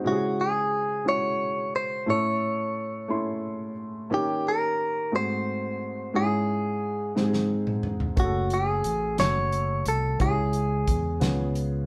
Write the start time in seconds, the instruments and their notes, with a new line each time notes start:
Already playing: grand piano F#4 C5
0.04 grand piano C#3 G#3 C#4 E4 G4, clean electric guitar F#4
0.12 grand piano G#4
0.41 clean electric guitar G#4
1.04 grand piano G#3 C#4 E4 F#4
1.09 clean electric guitar C#5
1.76 clean electric guitar C5
2.06 grand piano A2 A3 C#4 E4 A4
2.10 clean electric guitar C#5
3.08 grand piano A3 C#4 E4 C6
4.10 grand piano D#3 A#3 C#4 D#4 G4
4.14 clean electric guitar G4
4.48 clean electric guitar A#4
5.12 grand piano G#2 A3 C4 F#4 G#4
5.16 clean electric guitar C5
6.13 grand piano G#2 G#3 C#4 D#4 G#4, clean electric guitar G#4
6.21 grand piano E4
7.15 grand piano G#2 G#3 C4 D#4 G4, snare
7.24 grand piano G#4
7.34 snare
7.67 mid tom
7.83 mid tom
8.00 floor tom
8.16 fingered electric bass F#1, grand piano A3 C#4 F#4 G#4, clean electric guitar F#4, kick, closed hi-hat
8.24 grand piano A4
8.50 clean electric guitar G#4, closed hi-hat
8.84 fingered electric bass A1, closed hi-hat
9.18 fingered electric bass F#1, grand piano A3 C#4 F#4 A4, clean electric guitar C#5, snare, closed hi-hat
9.52 closed hi-hat
9.86 fingered electric bass C2, clean electric guitar A4, closed hi-hat
10.19 fingered electric bass C#2, grand piano C#3 G#3 C#4 E4 G4, clean electric guitar G#4, kick, closed hi-hat
10.28 grand piano G#4
10.53 closed hi-hat
10.88 fingered electric bass E2, kick, closed hi-hat
11.20 fingered electric bass C#2, grand piano C#3 B3 C#4 F4 G#4, snare, closed hi-hat
11.55 closed hi-hat